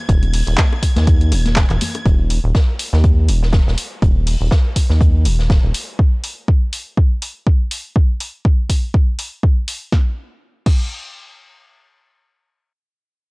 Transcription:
Already playing: G#6
0.09 D#1, kick, closed hi-hat, high bongo
0.23 closed hi-hat, high conga
0.33 open hi-hat
0.47 D#1, closed hi-hat, high bongo
0.58 kick, snare, clap, closed hi-hat, high conga
0.73 high bongo
0.83 kick, closed hi-hat, open hi-hat
0.96 D#2, snare, closed hi-hat, high conga
1.07 kick, closed hi-hat, high bongo
1.21 closed hi-hat
1.32 D#1, closed hi-hat, open hi-hat, high bongo
1.46 snare, closed hi-hat, high conga
1.56 kick, snare, clap, closed hi-hat
1.70 D#1, clap, closed hi-hat, high bongo, low conga
1.81 closed hi-hat, open hi-hat, high conga
1.95 closed hi-hat, high bongo
2.06 D#1, kick, closed hi-hat
2.30 closed hi-hat, open hi-hat
2.44 D#1
2.55 kick, snare, closed hi-hat
2.79 closed hi-hat, open hi-hat
2.93 D#2, snare
3.04 kick, closed hi-hat
3.28 D#1, closed hi-hat, open hi-hat
3.43 snare
3.53 kick, snare, closed hi-hat
3.67 D#1, snare
3.78 closed hi-hat, open hi-hat
4.02 D#1, kick, closed hi-hat
4.27 open hi-hat
4.41 D#1
4.51 kick, snare, closed hi-hat
4.76 kick, closed hi-hat, open hi-hat
4.90 D#2, snare
5.01 kick, closed hi-hat
5.25 D#1, closed hi-hat, open hi-hat
5.39 snare
5.50 kick, snare, closed hi-hat
5.64 D#1
5.74 closed hi-hat, open hi-hat
5.99 kick
6.24 open hi-hat
6.48 kick
6.73 open hi-hat
6.97 kick
7.22 open hi-hat
7.47 kick
7.71 open hi-hat
7.96 kick
8.20 open hi-hat
8.45 kick
8.70 kick, open hi-hat
8.94 kick
9.19 open hi-hat
9.43 kick
9.68 open hi-hat
9.92 kick, snare
10.66 kick, crash

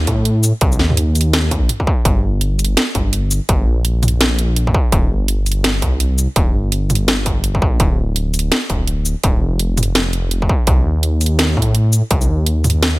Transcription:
0.07 A2, kick, closed hi-hat
0.25 closed hi-hat
0.43 shaker
0.61 C2, kick, closed hi-hat
0.72 shaker
0.79 D#2, snare
0.90 mid tom
0.97 closed hi-hat
1.15 closed hi-hat, shaker
1.21 closed hi-hat
1.33 snare, closed hi-hat
1.51 D#2, kick, closed hi-hat
1.62 A#1
1.69 closed hi-hat, mid tom
1.80 kick
1.87 kick
2.05 G1, kick, closed hi-hat
2.41 closed hi-hat
2.59 closed hi-hat, shaker
2.65 closed hi-hat
2.77 snare, closed hi-hat
2.95 G1, kick, closed hi-hat
3.13 closed hi-hat
3.31 shaker
3.49 G1, kick, closed hi-hat
3.67 A#1
3.85 closed hi-hat
4.03 closed hi-hat, mid tom, shaker
4.08 closed hi-hat
4.21 snare, closed hi-hat
4.39 closed hi-hat
4.56 closed hi-hat
4.67 kick
4.74 kick
4.92 D#1, kick, closed hi-hat
5.10 G1
5.28 closed hi-hat
5.46 closed hi-hat, shaker
5.52 closed hi-hat
5.64 snare, closed hi-hat
5.82 C2, kick, closed hi-hat
6.00 closed hi-hat
6.18 shaker
6.36 D#1, kick, closed hi-hat
6.54 G1
6.72 closed hi-hat
6.90 closed hi-hat, mid tom, shaker
6.95 closed hi-hat
7.08 snare, closed hi-hat
7.26 kick, closed hi-hat
7.44 closed hi-hat
7.55 kick
7.62 A#1, kick
7.80 D1, kick, closed hi-hat
8.16 closed hi-hat
8.34 closed hi-hat, shaker
8.39 closed hi-hat
8.52 snare, closed hi-hat
8.70 D1, kick, closed hi-hat
8.87 closed hi-hat
9.05 shaker
9.23 D1, kick, closed hi-hat
9.41 F1
9.59 closed hi-hat
9.77 closed hi-hat, mid tom, shaker
9.83 closed hi-hat
9.95 snare, closed hi-hat
10.13 closed hi-hat
10.31 closed hi-hat
10.42 kick
10.49 kick
10.67 C2, kick, closed hi-hat
10.85 D#2
11.03 closed hi-hat
11.21 closed hi-hat, shaker
11.26 closed hi-hat
11.39 snare, closed hi-hat
11.57 A2, kick
11.62 closed hi-hat
11.75 closed hi-hat
11.93 shaker
12.11 C2, kick, closed hi-hat
12.21 shaker
12.29 D#2
12.46 closed hi-hat
12.64 closed hi-hat, mid tom, shaker
12.70 closed hi-hat
12.83 snare, closed hi-hat

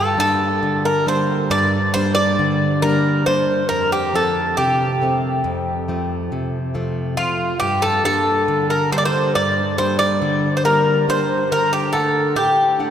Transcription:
Already playing: G2 A4
0.17 G3 A#3 D4 A4
0.63 D3
0.85 A#4
1.06 G3 A#3 D4 C5
1.50 G2 D5
1.94 G3 A#3 D4 C5
2.15 D5
2.39 D3
2.82 G3 A#3 D4 A#4
3.26 G3 A#3 D4 C5
3.69 F2 A#4
3.92 G4
4.13 F3 A3 C4 A4
4.57 C3 G4
5.01 F3 A3 C4
5.44 F2
5.88 F3 A3 C4
6.32 C3
6.75 F3 A3 C4
7.17 F3 A3 C4 F4
7.60 G2 G4
7.82 A4
8.04 G3 A#3 D4 A4
8.48 D3
8.70 A#4
8.92 G3 A#3 D4 C5
8.98 D5
9.05 C5
9.35 G2 D5
9.78 G3 A#3 D4 C5
9.99 D5
10.22 D3
10.57 C5
10.65 G3 A#3 D4 A#4
11.08 G3 A#3 D4 C5
11.52 D3 A#4
11.73 G4
11.93 A3 D4 A4 F#5
12.36 A2 G4
12.79 A3 D4 F#5

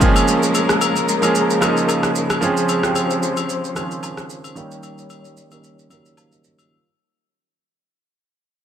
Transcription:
Already playing: G#3 A#4 D#5, downlifter
0.00 C#3 F3 G#3 A#3 C4 G#4 A#4, kick, shaker
0.08 C#4
0.16 high agogo, shaker
0.28 shaker
0.43 shaker
0.55 high agogo, shaker
0.69 cross-stick, shaker
0.81 high agogo, shaker
0.96 shaker
1.09 shaker
1.22 F3 G#3 A#3 C#4 G#4, high agogo, shaker
1.35 shaker
1.50 shaker
1.61 F3 G#3 A#3 C#4 D#4, cross-stick, high agogo, shaker
1.77 shaker
1.89 high agogo, low woodblock, shaker
2.03 cross-stick, shaker
2.16 shaker
2.30 cross-stick, high agogo, shaker
2.41 F3 G#3 C4 C#4 G#4 C5, shaker
2.57 shaker
2.69 high agogo, shaker
2.82 F3 G#3 C4 C#4 G4, cross-stick, shaker
2.92 G#4, high agogo
2.96 shaker
3.11 shaker
3.23 shaker
3.37 high agogo, shaker
3.49 shaker
3.65 shaker
3.75 D#3 G#3 C4 C#4 G#4, cross-stick, high agogo, shaker
3.81 F3
3.91 shaker
4.03 high agogo, low woodblock, shaker
4.17 cross-stick, shaker
4.30 shaker
4.44 high agogo, shaker
4.55 D#3 G3 A#3 C#4 D#4 G4 C#5, shaker
4.71 shaker
4.83 high agogo, shaker
4.98 shaker
5.10 high agogo, shaker
5.25 shaker
5.37 shaker
5.50 D#3 G3 A#3 C#4 A#4, high agogo, shaker
5.64 shaker
5.79 shaker
5.89 D#3 F#3 A#3 C#4 A#4, high agogo, shaker
5.96 G3
6.06 shaker
6.17 F5, high agogo, low woodblock, shaker
6.32 A#4 D#5, shaker
6.44 G4 C#5, shaker
6.59 F4, high agogo, shaker

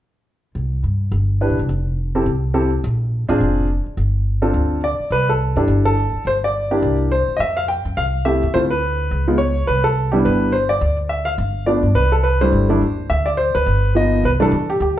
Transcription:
0.55 C2
0.84 G2
1.12 G1
1.41 D4 E4 G4 B4
1.50 B1
1.59 C2
1.69 F1
2.15 C4 E4 G4 A4
2.26 C2
2.54 C4 E4 G4 A4
2.84 A#1
3.29 A1 C4 D4 F4 G#4
3.41 F1
3.86 muted upright bass stroke
3.97 G1
4.42 C4 D4 F4 A4
4.54 D2
4.84 D5
4.99 muted upright bass stroke
5.11 C2 B4
5.29 A4
5.56 G2 D4 E4 G4 A4
5.68 G1
5.85 A4
6.13 muted upright bass stroke
6.25 G1 C5
6.44 D5
6.71 A#3 D4 E4 G4
6.82 C2
7.12 C5
7.28 muted upright bass stroke
7.37 F2 D#5 E5
7.57 F5
7.68 G5
7.85 F#2
7.97 C2 F5
8.25 A3 C4 E4 G4 E5
8.43 D#2
8.54 D2 A3 C4 E4 F4 C5
8.71 B4
9.11 C#2
9.27 G#3 B3 D#4 F4
9.38 C#5
9.67 C2 B4
9.84 A4
10.12 G3 B3 D4 E4 G4
10.25 G1 B4
10.52 C5
10.69 D5
10.81 D2
11.09 E5
11.25 F5
11.38 G1
11.66 F3 A3 B3 D4 D5
11.83 G2
11.95 C2 B4
12.12 A4
12.23 B4
12.41 G3 A3 D4 E4 C5
12.52 G1
12.69 G3 A3 D4 E4
12.81 D#2
13.10 D2 E5
13.26 D5
13.37 C5
13.55 D2 B4
13.66 G1
13.95 F3 A#3 B3 D#4 D#5
14.23 C2 B4
14.40 E3 G3 A3 D4 A4
14.52 E2
14.70 G4
14.80 D2 G4

